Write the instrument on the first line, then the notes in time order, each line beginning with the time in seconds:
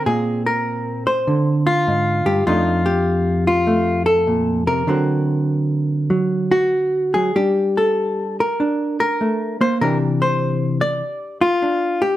hollow-body jazz guitar
Already playing: C4
0.06 A#2 G#4
0.46 A#4
1.07 C5
1.27 D3
1.67 F4
1.87 G#2
2.26 G2 G4
2.47 F2 A3 D4 D#4 F4
2.86 G4
3.47 F4
3.67 A3
4.06 A4
4.27 A#2
4.67 C3 A#4
4.87 D3 F#3 C4 F#4
6.10 F#3
6.51 F#4
7.14 F#3 G#4
7.36 G3 D4 G4
7.77 A4
8.40 A#4
8.60 D4
9.00 A#4
9.21 A3
9.61 A#3 C5
9.81 C3 E3 D4 G4 A#4
10.22 C5
10.81 D5
11.41 F4
11.62 D4
12.02 G4